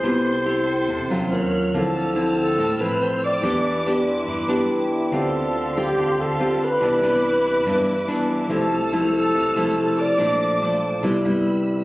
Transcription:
<<
  \new Staff \with { instrumentName = "String section" } { \time 4/4 \key c \major \tempo 4 = 142 <a' c'' g''>2. <des'' f''' ges'''>4 | <c' e''' f'''>1 | <b' e'' d'''>1 | <g' f'' c'''>1 |
<b' e'' d'''>1 | <a' e''' f'''>1 | <a'' d'''>2 <b'' e'''>2 | }
  \new Staff \with { instrumentName = "Violin section" } { \time 4/4 \key c \major c'''2.~ c'''8 r8 | a''4. a''4 b''8 c'''8 d'''8~ | d'''4. r2 r8 | a''4. g''4 a''4 b''8~ |
b''2.~ b''8 r8 | a''4. a''4. a''8 d'''8~ | d'''4. r2 r8 | }
  \new Staff \with { instrumentName = "Alto flute" } { \time 4/4 \key c \major c''2.~ c''8 r8 | a'4. a'4 b'8 c''8 d''8~ | d''4. r2 r8 | a'4. g'4 a'4 b'8~ |
b'2.~ b'8 r8 | a'4. a'4. a'8 d''8~ | d''4. r2 r8 | }
  \new Staff \with { instrumentName = "Vibraphone" } { \time 4/4 \key c \major << { r1 | r1 | r4. c'''8 b''8. a''16 g''8 e''8 | r1 |
r1 | r1 | r1 | } \\ { <c' e' g' a'>2. <f' bes' des''>4 | <e' a' c''>2~ <e' a' c''>8 <e' a' b'>4. | <e' g' b' d''>2~ <e' g' b' d''>8 <e' g' b' d''>4. | <f' a' c'' d''>1 |
<e' g' b' d''>1 | <e' g' a' c''>2~ <e' g' a' c''>8 <e' g' a' c''>4. | <f' a' c'' d''>2 <e' g' b' d''>2 | } >> }
  \new Staff \with { instrumentName = "Nylon-string guitar" } { \time 4/4 \key c \major << { <b e' g'>8 r8 <e' g'>4 r8 <fis des' f'>4. | <f c' e'>4 <f c' e'>4 r8 <f c' e'>4. | <b d' g'>4 <b d' g'>4. <b d' g'>4. | <c' f' g'>4 r8 <c' f' g'>4. <c' f' g'>8 r8 |
<e b d'>8 <e b d'>4. <e b d'>8 r8 <e b d'>4 | <f a e'>8 r8 <f a e'>4 r8 <f a e'>4. | <f a d'>4 <f a d'>8 r8 <g b e'>8 <g b e'>4. | } \\ { c2 c4 r4 | d2 a,2 | e2 e2 | d2 d2 |
c2 g,2 | c2 c2 | bes,2 c2 | } >> }
  \new Staff \with { instrumentName = "Fingered electric bass" } { \clef bass \time 4/4 \key c \major c,2 e,8 e,16 r16 ees,4 | d,2 a,,8 a,,8 r4 | e,2 g,8 g,8 r4 | d,2 d,8 d,8 r4 |
c,2 g,8 g,8 r4 | c,2 c,8 c,8 r4 | bes,,2 c,8 g,8 r4 | }
>>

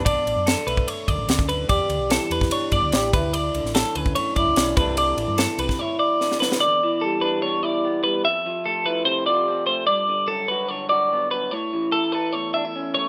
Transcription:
<<
  \new Staff \with { instrumentName = "Clean electric guitar" } { \time 4/4 \key e \dorian \tempo 4 = 147 d''4 a'8 b'8 cis''8 d''4 b'8 | d''4 a'8 b'8 cis''8 d''4 b'8 | d''4 a'8 b'8 cis''8 d''4 b'8 | d''4 a'8 b'8 cis''8 d''4 b'8 |
d''4 a'8 b'8 cis''8 d''4 b'8 | e''4 a'8 b'8 c''8 d''4 c''8 | d''4 a'8 b'8 cis''8 d''4 b'8 | cis''4 a'8 b'8 cis''8 e''4 cis''8 | }
  \new Staff \with { instrumentName = "Clean electric guitar" } { \clef bass \time 4/4 \key e \dorian << { d'4. a2~ a8 | g'2 d'4 g'8 e'8~ | e'4 fis8 cis'4 e'8 cis'8 <e a c' d'>8~ | <e a c' d'>2 e'4. fis8 |
r4 g8 d'4 e'8 b8 g8 | r4 a8 e'4 f'8 c'8 a8 | r4 fis8 fis'4 fis'8 b8 fis8 | r4 a8 a'4 d'16 e'16 cis'8 a8 | } \\ { b,4 d4. fis,8 cis8 d8 | e,4 e4. b,4 d,8~ | d,8 d4. a,4. c8~ | c8 e8 b,8 c8 d,4 d4 |
e,8 e4. b,2 | f,8 f4. c2 | g,8 d4. d2 | a,8 e4. e,2 | } >> }
  \new Staff \with { instrumentName = "Fingered electric bass" } { \clef bass \time 4/4 \key e \dorian b,,16 r16 a,,16 fis,8 r16 b,,8 r8 d,16 a,,16 d,4 | e,16 r16 d,16 b,,8 r16 e,8 r8 g,16 d,16 a,,8 d,8~ | d,8 cis,16 a,,8 r16 d,8 r8 fis,16 cis,16 b,,8 c,8~ | c,8 a,,16 g,8 r16 c,16 r2 r16 |
r1 | r1 | r1 | r1 | }
  \new DrumStaff \with { instrumentName = "Drums" } \drummode { \time 4/4 <bd cymr>8 cymr8 <cymr sn>8 cymr16 bd16 cymr8 <bd cymr>8 <cymr sn>16 bd16 cymr8 | <bd cymr>8 cymr8 <cymr sn>8 cymr16 <bd sn>16 cymr8 <bd cymr>8 <cymr sn>8 <bd cymr>8 | cymr8 cymr16 sn16 <cymr sn>8 cymr16 bd16 cymr8 <bd cymr>8 <cymr sn>8 <bd cymr>8 | cymr8 cymr8 <cymr sn>8 cymr16 <bd sn>16 r4 sn16 sn16 sn16 sn16 |
r4 r4 r4 r4 | r4 r4 r4 r4 | r4 r4 r4 r4 | r4 r4 r4 r4 | }
>>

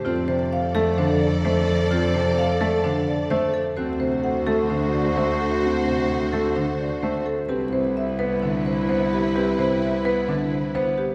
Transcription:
<<
  \new Staff \with { instrumentName = "Marimba" } { \time 4/4 \key c \major \tempo 4 = 129 c''8 r8 f''8 r8 c''8 d''8 r8 a'8 | c''8 r8 f''8 r8 c''8 d''8 r8 a'8 | c''8 r8 fis''8 r8 c''8 d''8 r8 a'8 | c''8 r8 fis''8 r8 c''8 d''8 r8 a'8 |
b'8 r8 e''8 r8 b'8 c''8 r8 g'8 | b'8 r8 e''8 r8 b'8 c''8 r8 g'8 | }
  \new Staff \with { instrumentName = "String section" } { \time 4/4 \key c \major <a' d''>1~ | <a' d''>2.~ <a' d''>8 r8 | <fis' c''>1~ | <fis' c''>2.~ <fis' c''>8 r8 |
<e' b'>1~ | <e' b'>2.~ <e' b'>8 r8 | }
  \new Staff \with { instrumentName = "Marimba" } { \time 4/4 \key c \major f'8 c''8 r8 a'8 d'8 r8 c''8 r8 | f'8 c''8 r8 a'8 d'8 r8 c''8 r8 | fis'8 c''8 r8 a'8 d'8 r8 c''8 r8 | fis'8 c''8 r8 a'8 d'8 r8 c''8 r8 |
g'8 c''8 r8 b'8 d'8 r8 c''8 r8 | g'8 c''8 r8 b'8 d'8 r8 c''8 r8 | }
  \new Staff \with { instrumentName = "Clarinet" } { \time 4/4 \key c \major a'1~ | a'2.~ a'8 r8 | fis'1~ | fis'2.~ fis'8 r8 |
e'1~ | e'2.~ e'8 r8 | }
  \new Staff \with { instrumentName = "Grand piano" } { \time 4/4 \key c \major c'8 c8 r8 a8 d8 r8 a8 r8 | c'8 c8 r8 a8 d8 r8 a8 r8 | c'8 c8 r8 a8 d8 r8 a8 r8 | c'8 c8 r8 a8 d8 r8 a8 r8 |
c'8 c8 r8 b8 d8 r8 b8 r8 | c'8 c8 r8 b8 d8 r8 b8 r8 | }
  \new Staff \with { instrumentName = "Cello" } { \clef bass \time 4/4 \key c \major f,1~ | f,1 | d,1~ | d,1 |
c,1~ | c,1 | }
>>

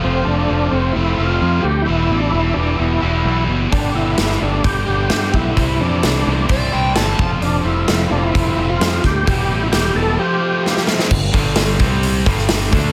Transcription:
<<
  \new Staff \with { instrumentName = "Electric slide guitar" } { \time 4/4 \key f \lydian \tempo 4 = 130 r1 | r1 | r1 | r2 d''8 g''8 a''8. r16 |
r1 | r1 | r1 | }
  \new Staff \with { instrumentName = "Tonewheel organ" } { \time 4/4 \key f \lydian c'8 d'4 c'8 e'8. f'8. g'8 | e'8. d'16 e'8 d'8 e'4. r8 | d'8 e'4 d'8 g'4 g'8 e'8~ | e'8 d'4. r2 |
d'8 e'4 d'16 e'4 f'8. g'8 | g'8. e'16 g'8 a'8 g'4. r8 | r1 | }
  \new Staff \with { instrumentName = "Distorted electric guitar" } { \clef bass \time 4/4 \key f \lydian <f, c f a c' f'>2 <f, c f a c' f'>8 <f, c f a c' f'>4 r8 | <e, b, e g b e'>2~ <e, b, e g b e'>8 <e, b, e g b e'>8 <e, b, e g b e'>4 | <g, d g b d' g'>2~ <g, d g b d' g'>8 <g, d g b d' g'>8 <g, d g b d' g'>4 | <c e g c' e'>2~ <c e g c' e'>8 <c e g c' e'>8 <c e g c' e'>8 <f, c f a c' f'>8~ |
<f, c f a c' f'>2 <f, c f a c' f'>8 <f, c f a c' f'>4 r8 | <e, b, e g b e'>2 <f, c f a c' f'>2 | <g, d>8 <g, d g>4 <c g c'>4 <g, d g>4 <d a d'>8 | }
  \new Staff \with { instrumentName = "Overdriven electric guitar" } { \clef bass \time 4/4 \key f \lydian f8 a8 f8 c'8 a8 c'8 f8 a8 | e8 b8 e8 e'8 b8 e'8 e8 b8 | g8 b8 g8 d'8 b8 d'8 g8 b8 | c8 e8 e8 d'8 c'8 d'8 e8 f8 |
f8 g8 g8 f'8 c'8 f'8 g8 c'8 | e8 g8 e8 b8 f8 f'8 g8 c'8 | <g, d>8 <g, d g>4 <c g c'>4 <g, d g>4 <d a d'>8 | }
  \new Staff \with { instrumentName = "Fingered electric bass" } { \clef bass \time 4/4 \key f \lydian f,,8 f,,8 f,,8 f,,8 f,,8 f,,8 f,8 d,8 | e,,8 a,,8 e,,8 e,,8 e,,8 e,,8 b,,8 fis,,8 | g,,8 g,,8 g,,8 g,,8 g,,8 g,,8 g,8 b,,8 | c,8 f,8 c,8 c,8 c,8 c,8 g,,8 f,,8 |
f,,8 f,,8 f,,8 f,,8 f,,8 f,,8 f,8 d,8 | e,,8 a,,8 e,,8 e,,8 r2 | g,,8 g,,4 c,4 g,,4 d,8 | }
  \new DrumStaff \with { instrumentName = "Drums" } \drummode { \time 4/4 r4 r4 r4 r4 | r4 r4 r4 r4 | <hho bd>4 <hho sn>16 sn8. <hho bd>4 <hho sn>8 bd8 | <hho bd>4 <hho sn>4 <hho bd>4 <hho sn>8 bd8 |
hho4 <hho sn>4 <hho bd>4 <hho sn>8 <bd sn>8 | <hho bd>4 <hho sn>4 r4 sn16 sn16 sn16 sn16 | <cymc bd>8 <hho bd>8 <hho sn>8 <hho bd>8 hho8 <hho bd>16 sn16 <hho sn>8 <hho bd>8 | }
>>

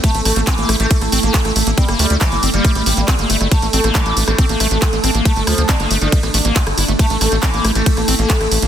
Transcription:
<<
  \new Staff \with { instrumentName = "Ambient pad" } { \time 4/4 \key a \phrygian \tempo 4 = 138 <a e'>1~ | <a e'>1 | d'1~ | d'1 |
e'1 | }
  \new Staff \with { instrumentName = "Acid bass" } { \time 4/4 \key a \phrygian a16 a16 a16 bes16 c'16 bes16 a16 a16 a16 bes16 c'16 bes16 r16 a16 a16 bes16 | c'16 bes16 a16 a16 r16 bes16 c'16 bes16 a16 a16 a16 bes16 c'16 bes16 a16 a16 | a16 bes16 c'16 bes16 a16 a16 a16 bes16 c'16 bes16 a16 a16 a16 bes16 c'16 bes16 | a16 a16 a16 bes16 c'16 bes16 a16 a16 a16 bes16 a16 bes16 r8 e'16 a16 |
a16 a16 a16 bes16 c'16 bes16 a16 a16 a16 bes16 c'16 bes16 a16 a16 a16 bes16 | }
  \new Staff \with { instrumentName = "Sitar" } { \clef bass \time 4/4 \key a \phrygian a16 r16 a16 r16 e8 r16 a2 r16 | g16 r16 g16 r16 e8 r16 g2 r16 | a16 r16 a16 r16 e8 r16 a2 r16 | a16 r16 f16 r16 d8 r16 d2 r16 |
a16 r16 a16 r16 e8 r16 a2 r16 | }
  \new Staff \with { instrumentName = "Analog synth bass" } { \clef bass \time 4/4 \key a \phrygian r16 a,,16 a,,16 a,,16 r16 a,,16 a,,16 a,,16 r16 a,,16 a,,16 a,,16 r16 a,,16 a,,16 a,,16 | r16 g,,16 d,16 d,16 r16 g,,16 g,,16 g,,16 r16 a,,16 a,,16 a,,16 r16 g,,16 g,,16 g,,16 | r16 a,,16 a,,16 a,,16 r16 a,,16 a,,16 a,,16 r16 a,,16 a,,16 a,,16 r16 a,,16 a,,16 a,,16 | r16 g,,16 d,16 d,16 r16 g,,16 g,,16 g,,16 r16 a,,16 a,,16 a,,16 r16 g,,16 g,,16 g,,16 |
r16 a,,16 a,,16 a,,16 r16 a,,16 a,,16 a,,16 r16 a,,16 a,,16 a,,16 r16 a,,16 a,,16 a,,16 | }
  \new DrumStaff \with { instrumentName = "Drums" } \drummode { \time 4/4 <hh bd cymr>16 hh16 <hho ss>16 hh16 <hc hh bd cymr>16 hh16 <hho ss>16 hh16 <hh bd cymr>16 <hh ss>16 hho16 hh16 <hc hh bd cymr>16 <hh ss>16 hho16 hh16 | <hh bd cymr>16 <hh ss>16 hho16 hh16 <hc hh bd cymr ss>16 hh16 hho16 hh16 <hh bd cymr ss>16 hh16 hho16 hh16 <hc hh bd cymr ss>16 hh16 hho16 <hh ss>16 | <hh bd cymr>16 hh16 hho16 <hh ss>16 <hc hh bd cymr>16 hh16 hho16 <hh ss>16 <hh bd cymr>16 hh16 <hho ss>16 hh16 <hc hh bd cymr>16 hh16 <hho ss>16 hh16 | <hh bd cymr>16 hh16 <hho ss>16 hh16 <hc hh bd cymr>16 <hh ss>16 hho16 hh16 <hh bd cymr>16 <hh ss>16 hho16 hh16 <hc hh bd cymr>16 <hh ss>16 hho16 hh16 |
<hh bd cymr>16 hh16 <hho ss>16 hh16 <hc hh bd cymr>16 hh16 <hho ss>16 hh16 <hh bd cymr>16 <hh ss>16 hho16 hh16 <hc hh bd cymr>16 <hh ss>16 hho16 hh16 | }
>>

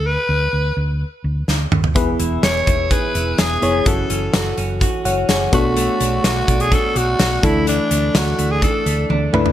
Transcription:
<<
  \new Staff \with { instrumentName = "Alto saxophone" } { \time 4/4 \key b \dorian \tempo 4 = 126 b'4. r2 r8 | r4 cis''4 b'4 gis'4 | a'4. r2 fis'8~ | fis'4 fis'8. gis'16 a'8 fis'4 e'8 |
d'4 fis'8. gis'16 a'4 r4 | }
  \new Staff \with { instrumentName = "FM electric piano" } { \time 4/4 \key b \dorian << { r1 | r1 | r2 r8 <cis'' fis''>8 <gis' cis''>4 | r1 |
r1 | } \\ { r1 | <b e' gis' b'>4. r2 <b e' gis' cis''>8 | <cis' e' fis' a'>4. r2 <b d' fis' a'>8~ | <b d' fis' a'>4 r2 r8 <a d' e' a'>8~ |
<a d' e' a'>4 r2 r8 <a d' e' b'>8 | } >> }
  \new Staff \with { instrumentName = "Clean electric guitar" } { \time 4/4 \key b \dorian r1 | e8 e'8 gis'8 e'8 gis'8 e'8 gis'8 b8 | e8 cis'8 fis'8 cis'8 fis'8 cis'8 fis'8 a8 | a8 d'8 fis'8 d'8 fis'8 d'8 fis'8 e8 |
e8 a8 d'8 a8 d'8 a8 d'8 e8 | }
  \new Staff \with { instrumentName = "Fingered electric bass" } { \clef bass \time 4/4 \key b \dorian d,8 d,8 d,8 d,8. r16 d,8 d,8 dis,8 | e,,8 e,,8 e,,8 e,,8. r16 e,,8 e,,8 f,,8 | fis,,8 fis,,8 fis,,8 fis,,8. r16 fis,,8 fis,,8 b,,8~ | b,,8 b,,8 b,,8 b,,8. r16 b,,8 b,,8 d,8~ |
d,8 d,8 d,8 d,8. r16 d,8 d,8 cis,8 | }
  \new DrumStaff \with { instrumentName = "Drums" } \drummode { \time 4/4 r4 r4 r4 sn8 toml16 tomfh16 | <hh bd>8 hh8 <hh sn>8 <hh bd>8 <hh bd>8 hh8 <hh sn>8 hh8 | <hh bd>8 hh8 <hh sn>8 hh8 <hh bd>8 hh8 <hh sn>8 <hh bd>8 | hh8 hh8 <hh sn>8 <hh bd>16 hh16 <hh bd>8 hh8 <hh sn>8 <hh bd>8 |
hh8 hh8 <hh sn>8 hh8 <hh bd>8 hh8 tommh8 toml16 tomfh16 | }
>>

